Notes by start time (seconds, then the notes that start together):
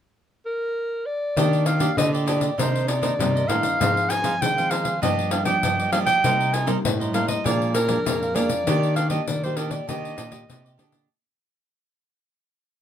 0.46 A#4
1.06 D5
1.37 D#3 A#3 D4 G4 D5 D#5, pandeiro
1.53 pandeiro
1.65 D4 G4 D5 D#5 F5, pandeiro
1.79 A#3 D4 G4 D5 D#5, pandeiro
1.97 A#2 D3 D#5, pandeiro
2.13 G4 D5 D#5, pandeiro
2.26 A#3 D4 G4 D5 D#5, pandeiro
2.40 G4 D5 D#5, pandeiro
2.58 C3 D#3 A#3 D4 D#4 A#4 C5 D#5, pandeiro
2.76 pandeiro
2.87 D#4 A#4 C5 D5 D#5, pandeiro
3.02 D#3 A#3 D4 D#4 A#4 C5 D#5, pandeiro
3.19 G2 C3 D#4 A#4 C5 D#5, pandeiro
3.35 A#4 C5 D#5, pandeiro
3.48 A2 D#3 A#3 D4 D#4 A#4 C5 D#5 F5, pandeiro
3.63 pandeiro
3.80 G#2 F3 C4 D#4 G#4 C5 F5, pandeiro
3.97 pandeiro
4.09 D#4 G#4 C5 F5 G#5, pandeiro
4.23 F3 C4 D#4 G#4 C5 F5, pandeiro
4.41 D#3 G#3 G5, pandeiro
4.57 F3 C4 D#4 G#4 C5 F5, pandeiro
4.70 D#4 G#4 C5 F5, pandeiro
4.84 G#4 C5 F5, pandeiro
5.02 G2 F3 A#3 D4 G4 D5 D#5, pandeiro
5.19 pandeiro
5.31 D4 G4 D5 D#5 F5, pandeiro
5.45 F3 A#3 D4 G4 D5 D#5 G5, pandeiro
5.63 G2 D4 G4 D5 D#5, pandeiro
5.79 G4 D5 D#5, pandeiro
5.92 F3 G3 A#3 D4 G4 D5 D#5 F5, pandeiro
6.07 G5, pandeiro
6.23 C3 G3 A#3 D#4 A#4 C5 D#5, pandeiro
6.41 pandeiro
6.52 D#4 A#4 C5 D#5 G#5, pandeiro
6.67 G3 A#3 D#4 A#4 C5 D#5, pandeiro
6.85 G2 A2, pandeiro
7.00 A#4 C5 D#5, pandeiro
7.13 G3 A#3 D#4 A#4 C5 D#5 F5, pandeiro
7.27 A#4 C5 D#5, pandeiro
7.44 A#2 F3 G#3 D4 G#4 A#4 D5 F5, pandeiro
7.62 pandeiro
7.74 G#4 A#4 D5 F5, pandeiro
7.88 F3 G#3 D4 G#4 A#4 D5 F5, pandeiro
8.05 F2 A#2 G#4 A#4 D5 F5, pandeiro
8.22 A#4 D5 F5, pandeiro
8.34 F3 G#3 A#3 D4 G#4 A#4 D5 F5, pandeiro
8.49 pandeiro
8.67 D#3 A#3 D4 G4 D5 D#5, pandeiro
8.83 pandeiro
8.96 D4 G4 D5 D#5 F5, pandeiro
9.10 A#3 D4 G4 D5 D#5, pandeiro
9.28 A#2 D#3 D5, pandeiro
9.44 A#3 D4 G4 C5 D5 D#5, pandeiro
9.56 D4 G4 A#4 D5 D#5, pandeiro
9.70 G4 D5 D#5, pandeiro
9.87 D#3 A#3 D4 G4 D5 D#5, pandeiro
10.05 pandeiro
10.16 A#2 D4 G4 D5 D#5, pandeiro
10.31 A#3 D4 G4 D5 D#5, pandeiro
10.48 A#2 C3 D4 G4 D5 D#5, pandeiro
10.65 G4 D5 D#5, pandeiro
10.78 D3 A#3 D4 G4 D5 D#5, pandeiro
10.92 pandeiro